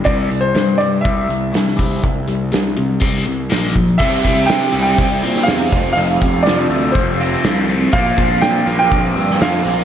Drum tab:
CC |----------------|----------------|x---------------|----------------|
HH |x-x-x-x-x-x-x-x-|x-x-x-x-x-x-x-x-|--o-o-o-o-o-o-o-|o-o-o-o-o-o-o-o-|
SD |----o-------oo--|----o-------oo--|----o------oo---|----o-------o---|
BD |o-------o-----o-|o-------o-----o-|o-o-----o-----o-|--o-----o-------|

CC |----------------|
HH |o-o-o-o-o-o-o-o-|
SD |----o------oo---|
BD |o-o-----o-------|